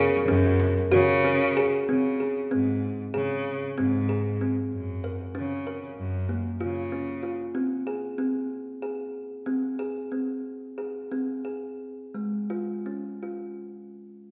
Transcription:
0, 0, Header, 1, 5, 480
1, 0, Start_track
1, 0, Key_signature, -5, "major"
1, 0, Tempo, 634249
1, 1426, Time_signature, 9, 3, 24, 8
1, 7656, Tempo, 674916
1, 9096, Tempo, 728155
1, 10526, End_track
2, 0, Start_track
2, 0, Title_t, "Vibraphone"
2, 0, Program_c, 0, 11
2, 0, Note_on_c, 0, 70, 88
2, 1154, Note_off_c, 0, 70, 0
2, 10526, End_track
3, 0, Start_track
3, 0, Title_t, "Kalimba"
3, 0, Program_c, 1, 108
3, 0, Note_on_c, 1, 68, 88
3, 177, Note_off_c, 1, 68, 0
3, 213, Note_on_c, 1, 61, 99
3, 622, Note_off_c, 1, 61, 0
3, 693, Note_on_c, 1, 66, 105
3, 901, Note_off_c, 1, 66, 0
3, 944, Note_on_c, 1, 61, 80
3, 1149, Note_off_c, 1, 61, 0
3, 1187, Note_on_c, 1, 68, 99
3, 1390, Note_off_c, 1, 68, 0
3, 1429, Note_on_c, 1, 60, 79
3, 1631, Note_off_c, 1, 60, 0
3, 1665, Note_on_c, 1, 68, 61
3, 1867, Note_off_c, 1, 68, 0
3, 1902, Note_on_c, 1, 60, 75
3, 2306, Note_off_c, 1, 60, 0
3, 2376, Note_on_c, 1, 68, 74
3, 2782, Note_off_c, 1, 68, 0
3, 2858, Note_on_c, 1, 60, 79
3, 3059, Note_off_c, 1, 60, 0
3, 3096, Note_on_c, 1, 68, 60
3, 3298, Note_off_c, 1, 68, 0
3, 3338, Note_on_c, 1, 60, 61
3, 3741, Note_off_c, 1, 60, 0
3, 3814, Note_on_c, 1, 70, 65
3, 4014, Note_off_c, 1, 70, 0
3, 4047, Note_on_c, 1, 61, 65
3, 4249, Note_off_c, 1, 61, 0
3, 4289, Note_on_c, 1, 70, 61
3, 4691, Note_off_c, 1, 70, 0
3, 4761, Note_on_c, 1, 58, 61
3, 4962, Note_off_c, 1, 58, 0
3, 4999, Note_on_c, 1, 65, 71
3, 5201, Note_off_c, 1, 65, 0
3, 5239, Note_on_c, 1, 61, 57
3, 5440, Note_off_c, 1, 61, 0
3, 5470, Note_on_c, 1, 65, 59
3, 5676, Note_off_c, 1, 65, 0
3, 5712, Note_on_c, 1, 60, 70
3, 5917, Note_off_c, 1, 60, 0
3, 5954, Note_on_c, 1, 68, 62
3, 6159, Note_off_c, 1, 68, 0
3, 6192, Note_on_c, 1, 60, 63
3, 6602, Note_off_c, 1, 60, 0
3, 6678, Note_on_c, 1, 68, 56
3, 7088, Note_off_c, 1, 68, 0
3, 7161, Note_on_c, 1, 60, 67
3, 7368, Note_off_c, 1, 60, 0
3, 7410, Note_on_c, 1, 68, 56
3, 7617, Note_off_c, 1, 68, 0
3, 7656, Note_on_c, 1, 60, 54
3, 8051, Note_off_c, 1, 60, 0
3, 8127, Note_on_c, 1, 68, 54
3, 8326, Note_off_c, 1, 68, 0
3, 8367, Note_on_c, 1, 60, 60
3, 8567, Note_off_c, 1, 60, 0
3, 8602, Note_on_c, 1, 68, 45
3, 9019, Note_off_c, 1, 68, 0
3, 9098, Note_on_c, 1, 56, 49
3, 9295, Note_off_c, 1, 56, 0
3, 9333, Note_on_c, 1, 65, 62
3, 9533, Note_off_c, 1, 65, 0
3, 9570, Note_on_c, 1, 61, 49
3, 9773, Note_off_c, 1, 61, 0
3, 9811, Note_on_c, 1, 65, 51
3, 10014, Note_off_c, 1, 65, 0
3, 10526, End_track
4, 0, Start_track
4, 0, Title_t, "Cello"
4, 0, Program_c, 2, 42
4, 0, Note_on_c, 2, 49, 124
4, 122, Note_off_c, 2, 49, 0
4, 213, Note_on_c, 2, 42, 123
4, 600, Note_off_c, 2, 42, 0
4, 698, Note_on_c, 2, 49, 122
4, 1282, Note_off_c, 2, 49, 0
4, 1431, Note_on_c, 2, 49, 73
4, 1812, Note_off_c, 2, 49, 0
4, 1905, Note_on_c, 2, 44, 72
4, 2287, Note_off_c, 2, 44, 0
4, 2383, Note_on_c, 2, 49, 90
4, 2764, Note_off_c, 2, 49, 0
4, 2857, Note_on_c, 2, 44, 82
4, 3431, Note_off_c, 2, 44, 0
4, 3575, Note_on_c, 2, 42, 72
4, 3956, Note_off_c, 2, 42, 0
4, 4052, Note_on_c, 2, 49, 70
4, 4432, Note_off_c, 2, 49, 0
4, 4526, Note_on_c, 2, 42, 84
4, 4906, Note_off_c, 2, 42, 0
4, 5002, Note_on_c, 2, 49, 72
4, 5575, Note_off_c, 2, 49, 0
4, 10526, End_track
5, 0, Start_track
5, 0, Title_t, "Frame drum"
5, 213, Note_on_c, 9, 64, 22
5, 289, Note_off_c, 9, 64, 0
5, 452, Note_on_c, 9, 64, 56
5, 528, Note_off_c, 9, 64, 0
5, 1188, Note_on_c, 9, 64, 23
5, 1264, Note_off_c, 9, 64, 0
5, 10526, End_track
0, 0, End_of_file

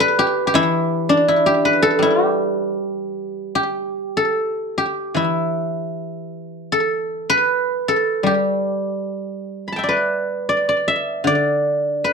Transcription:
0, 0, Header, 1, 2, 480
1, 0, Start_track
1, 0, Tempo, 737101
1, 356, Time_signature, 2, 2, 24, 8
1, 1800, Tempo, 796813
1, 3240, Tempo, 772201
1, 5160, Tempo, 809717
1, 6600, Tempo, 777202
1, 7500, End_track
2, 0, Start_track
2, 0, Title_t, "Guzheng"
2, 0, Program_c, 0, 107
2, 0, Note_on_c, 0, 57, 40
2, 0, Note_on_c, 0, 59, 39
2, 0, Note_on_c, 0, 62, 45
2, 0, Note_on_c, 0, 64, 50
2, 0, Note_on_c, 0, 67, 78
2, 0, Note_on_c, 0, 69, 70
2, 0, Note_on_c, 0, 74, 95
2, 0, Note_on_c, 0, 76, 82
2, 1, Note_on_c, 0, 71, 86
2, 120, Note_off_c, 0, 67, 0
2, 123, Note_on_c, 0, 67, 79
2, 304, Note_off_c, 0, 67, 0
2, 306, Note_off_c, 0, 76, 0
2, 307, Note_on_c, 0, 67, 61
2, 351, Note_on_c, 0, 52, 55
2, 356, Note_off_c, 0, 64, 0
2, 358, Note_on_c, 0, 64, 90
2, 513, Note_off_c, 0, 62, 0
2, 623, Note_off_c, 0, 74, 0
2, 688, Note_off_c, 0, 59, 0
2, 712, Note_on_c, 0, 62, 69
2, 818, Note_off_c, 0, 57, 0
2, 833, Note_off_c, 0, 64, 0
2, 836, Note_on_c, 0, 64, 62
2, 950, Note_off_c, 0, 67, 0
2, 952, Note_on_c, 0, 67, 69
2, 1073, Note_off_c, 0, 71, 0
2, 1075, Note_on_c, 0, 71, 79
2, 1186, Note_off_c, 0, 69, 0
2, 1188, Note_on_c, 0, 69, 80
2, 1294, Note_on_c, 0, 55, 46
2, 1316, Note_off_c, 0, 67, 0
2, 1319, Note_off_c, 0, 64, 0
2, 1319, Note_on_c, 0, 64, 78
2, 1469, Note_off_c, 0, 64, 0
2, 1469, Note_on_c, 0, 67, 78
2, 1798, Note_off_c, 0, 52, 0
2, 2272, Note_off_c, 0, 67, 0
2, 2275, Note_on_c, 0, 67, 65
2, 2361, Note_off_c, 0, 71, 0
2, 2478, Note_off_c, 0, 62, 0
2, 2555, Note_off_c, 0, 69, 0
2, 2646, Note_on_c, 0, 69, 58
2, 2760, Note_off_c, 0, 55, 0
2, 3010, Note_off_c, 0, 67, 0
2, 3013, Note_on_c, 0, 67, 55
2, 3234, Note_on_c, 0, 52, 39
2, 3246, Note_on_c, 0, 64, 50
2, 3991, Note_off_c, 0, 69, 0
2, 4214, Note_on_c, 0, 69, 67
2, 4469, Note_off_c, 0, 67, 0
2, 4571, Note_on_c, 0, 71, 81
2, 4678, Note_off_c, 0, 52, 0
2, 4866, Note_off_c, 0, 64, 0
2, 4934, Note_off_c, 0, 69, 0
2, 4936, Note_on_c, 0, 69, 64
2, 5153, Note_on_c, 0, 55, 42
2, 5173, Note_on_c, 0, 67, 55
2, 5810, Note_off_c, 0, 71, 0
2, 6010, Note_on_c, 0, 83, 26
2, 6038, Note_on_c, 0, 81, 29
2, 6060, Note_on_c, 0, 79, 31
2, 6074, Note_on_c, 0, 76, 33
2, 6104, Note_on_c, 0, 74, 37
2, 6134, Note_on_c, 0, 71, 59
2, 6247, Note_off_c, 0, 69, 0
2, 6489, Note_off_c, 0, 74, 0
2, 6492, Note_on_c, 0, 74, 58
2, 6568, Note_off_c, 0, 67, 0
2, 6598, Note_off_c, 0, 55, 0
2, 6607, Note_off_c, 0, 74, 0
2, 6610, Note_on_c, 0, 74, 58
2, 6724, Note_off_c, 0, 76, 0
2, 6727, Note_on_c, 0, 76, 65
2, 6818, Note_off_c, 0, 83, 0
2, 6908, Note_off_c, 0, 81, 0
2, 6950, Note_on_c, 0, 50, 39
2, 6967, Note_off_c, 0, 74, 0
2, 6970, Note_on_c, 0, 74, 72
2, 6997, Note_off_c, 0, 79, 0
2, 7376, Note_off_c, 0, 71, 0
2, 7447, Note_on_c, 0, 71, 61
2, 7500, Note_off_c, 0, 50, 0
2, 7500, Note_off_c, 0, 71, 0
2, 7500, Note_off_c, 0, 74, 0
2, 7500, Note_off_c, 0, 76, 0
2, 7500, End_track
0, 0, End_of_file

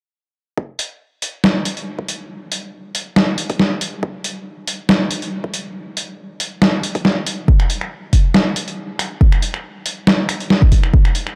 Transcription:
0, 0, Header, 1, 2, 480
1, 0, Start_track
1, 0, Tempo, 431655
1, 641, Time_signature, 4, 2, 24, 8
1, 12625, End_track
2, 0, Start_track
2, 0, Title_t, "Drums"
2, 640, Note_on_c, 9, 36, 104
2, 751, Note_off_c, 9, 36, 0
2, 878, Note_on_c, 9, 42, 74
2, 989, Note_off_c, 9, 42, 0
2, 1359, Note_on_c, 9, 42, 75
2, 1470, Note_off_c, 9, 42, 0
2, 1599, Note_on_c, 9, 38, 110
2, 1710, Note_off_c, 9, 38, 0
2, 1839, Note_on_c, 9, 42, 74
2, 1950, Note_off_c, 9, 42, 0
2, 1967, Note_on_c, 9, 42, 34
2, 2079, Note_off_c, 9, 42, 0
2, 2209, Note_on_c, 9, 36, 57
2, 2318, Note_on_c, 9, 42, 75
2, 2320, Note_off_c, 9, 36, 0
2, 2429, Note_off_c, 9, 42, 0
2, 2798, Note_on_c, 9, 42, 77
2, 2909, Note_off_c, 9, 42, 0
2, 3278, Note_on_c, 9, 42, 77
2, 3389, Note_off_c, 9, 42, 0
2, 3517, Note_on_c, 9, 38, 113
2, 3629, Note_off_c, 9, 38, 0
2, 3756, Note_on_c, 9, 42, 75
2, 3868, Note_off_c, 9, 42, 0
2, 3887, Note_on_c, 9, 42, 35
2, 3889, Note_on_c, 9, 36, 98
2, 3998, Note_off_c, 9, 42, 0
2, 3998, Note_on_c, 9, 38, 59
2, 4000, Note_off_c, 9, 36, 0
2, 4109, Note_off_c, 9, 38, 0
2, 4238, Note_on_c, 9, 42, 75
2, 4350, Note_off_c, 9, 42, 0
2, 4480, Note_on_c, 9, 36, 114
2, 4591, Note_off_c, 9, 36, 0
2, 4719, Note_on_c, 9, 42, 75
2, 4830, Note_off_c, 9, 42, 0
2, 5198, Note_on_c, 9, 42, 76
2, 5310, Note_off_c, 9, 42, 0
2, 5437, Note_on_c, 9, 38, 119
2, 5548, Note_off_c, 9, 38, 0
2, 5678, Note_on_c, 9, 42, 74
2, 5789, Note_off_c, 9, 42, 0
2, 5807, Note_on_c, 9, 42, 35
2, 5918, Note_off_c, 9, 42, 0
2, 6049, Note_on_c, 9, 36, 60
2, 6156, Note_on_c, 9, 42, 73
2, 6160, Note_off_c, 9, 36, 0
2, 6267, Note_off_c, 9, 42, 0
2, 6637, Note_on_c, 9, 42, 74
2, 6748, Note_off_c, 9, 42, 0
2, 7117, Note_on_c, 9, 42, 75
2, 7228, Note_off_c, 9, 42, 0
2, 7358, Note_on_c, 9, 38, 116
2, 7469, Note_off_c, 9, 38, 0
2, 7600, Note_on_c, 9, 42, 72
2, 7711, Note_off_c, 9, 42, 0
2, 7729, Note_on_c, 9, 36, 104
2, 7729, Note_on_c, 9, 42, 34
2, 7838, Note_on_c, 9, 38, 59
2, 7840, Note_off_c, 9, 36, 0
2, 7840, Note_off_c, 9, 42, 0
2, 7950, Note_off_c, 9, 38, 0
2, 8079, Note_on_c, 9, 42, 73
2, 8190, Note_off_c, 9, 42, 0
2, 8320, Note_on_c, 9, 36, 117
2, 8431, Note_off_c, 9, 36, 0
2, 8448, Note_on_c, 9, 26, 78
2, 8560, Note_off_c, 9, 26, 0
2, 8560, Note_on_c, 9, 42, 78
2, 8671, Note_off_c, 9, 42, 0
2, 8689, Note_on_c, 9, 26, 49
2, 8800, Note_off_c, 9, 26, 0
2, 9039, Note_on_c, 9, 42, 78
2, 9040, Note_on_c, 9, 36, 57
2, 9150, Note_off_c, 9, 42, 0
2, 9151, Note_off_c, 9, 36, 0
2, 9279, Note_on_c, 9, 38, 117
2, 9390, Note_off_c, 9, 38, 0
2, 9519, Note_on_c, 9, 42, 79
2, 9631, Note_off_c, 9, 42, 0
2, 9649, Note_on_c, 9, 42, 37
2, 9760, Note_off_c, 9, 42, 0
2, 10000, Note_on_c, 9, 26, 76
2, 10000, Note_on_c, 9, 42, 76
2, 10111, Note_off_c, 9, 26, 0
2, 10111, Note_off_c, 9, 42, 0
2, 10241, Note_on_c, 9, 36, 119
2, 10352, Note_off_c, 9, 36, 0
2, 10368, Note_on_c, 9, 26, 75
2, 10479, Note_off_c, 9, 26, 0
2, 10479, Note_on_c, 9, 42, 81
2, 10591, Note_off_c, 9, 42, 0
2, 10608, Note_on_c, 9, 26, 50
2, 10720, Note_off_c, 9, 26, 0
2, 10960, Note_on_c, 9, 42, 81
2, 11072, Note_off_c, 9, 42, 0
2, 11199, Note_on_c, 9, 38, 117
2, 11311, Note_off_c, 9, 38, 0
2, 11440, Note_on_c, 9, 26, 61
2, 11440, Note_on_c, 9, 42, 79
2, 11552, Note_off_c, 9, 26, 0
2, 11552, Note_off_c, 9, 42, 0
2, 11569, Note_on_c, 9, 42, 37
2, 11680, Note_on_c, 9, 38, 61
2, 11681, Note_off_c, 9, 42, 0
2, 11791, Note_off_c, 9, 38, 0
2, 11810, Note_on_c, 9, 36, 107
2, 11918, Note_on_c, 9, 42, 79
2, 11921, Note_off_c, 9, 36, 0
2, 11921, Note_on_c, 9, 36, 61
2, 12029, Note_off_c, 9, 42, 0
2, 12032, Note_off_c, 9, 36, 0
2, 12048, Note_on_c, 9, 26, 48
2, 12160, Note_off_c, 9, 26, 0
2, 12161, Note_on_c, 9, 36, 120
2, 12272, Note_off_c, 9, 36, 0
2, 12288, Note_on_c, 9, 26, 73
2, 12398, Note_on_c, 9, 42, 79
2, 12400, Note_off_c, 9, 26, 0
2, 12509, Note_off_c, 9, 42, 0
2, 12528, Note_on_c, 9, 26, 49
2, 12625, Note_off_c, 9, 26, 0
2, 12625, End_track
0, 0, End_of_file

